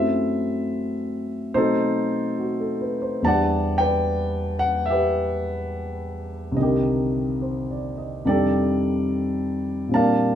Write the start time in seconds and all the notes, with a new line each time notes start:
Already playing: F#2 F#3 A3 C4 E4 A4 C5 E5
1.54 B2 F#3 A3 C4 D#4 A4 C5
2.39 F#4
2.60 A4
2.81 B4
3.02 C5
3.22 E2 E3 G3 D4 A5
3.26 G4 D5 F#5
3.78 B4 D5 G5
4.59 F#5
4.86 E5
4.90 G4 B4
6.52 C2 C3
6.57 D3 D#3 D#5
6.62 G4 A#4
7.42 C5
7.71 D5
7.98 D#5
8.25 F2 C3 D#3 G3 D4 G4 A4 D5
8.30 A4
9.89 A#2 G3 C4
9.93 D4 A#4 D5 F5 A5